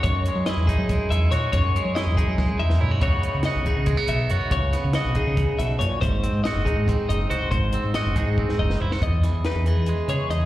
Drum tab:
HH |x-x-x-x-x-x-x-|x-x-x-x-------|x-x-x-x-x-x-x-|x-x-x-x-x-x-x-|
SD |----o-------o-|----o---o--o--|----o---------|--o-o-----o---|
T1 |--------------|---------o----|--------------|--------------|
FT |--------------|------------oo|--------------|--------------|
BD |o-----o-o-----|o-----o-o-----|o-----o-o-----|o-----o-o-----|

HH |x-x-x-x-x-x-x-|x-x-x-x-------|x-x-x-x-x-x-x-|
SD |----o---------|----o----o-o-o|--o-o-------o-|
T1 |--------------|--------------|--------------|
FT |--------------|------------o-|--------------|
BD |o-----o-o-----|o-----o-o-o---|o-------------|